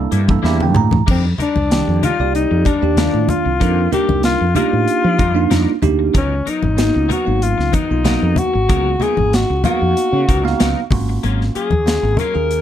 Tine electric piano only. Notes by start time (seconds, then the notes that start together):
Already playing: A#3 D4 E4 A4
0.30 A#3 D4 E4 A4
0.44 A#3 D4 E4 G4 E5
0.63 G5
0.77 A#5
1.70 D#3 A#3 D4 G4
2.19 A#3 D#4 G4 D5
2.82 A#3 D4 D#4 G4
2.98 D#3 A#3 D4 F4
3.60 A#3 D4 D#4 A#4
3.92 A#3 D4 D#4 A#4
4.55 A#3 D4 D#4 G4
5.35 A#3 D4 D#4 F4
5.82 A#3 D4 D#4 G4
6.77 A#3 B3 D#4 F#4
7.25 F#3 A#3 B3 D#4
7.90 A#3 B3 D#4 F4
8.05 A#3 B3 D#4 F#4
8.68 A#3 B3 D#4 G#4
8.99 A#3 B3 D#4 F4
9.64 A#3 B3 D#4 F5
10.44 A#3 B3 D#4 F5
10.91 A#3 C#4 F4 F#4
11.86 A#3 C#4 F4 F#4
12.34 A#3 C#4 F4 G#4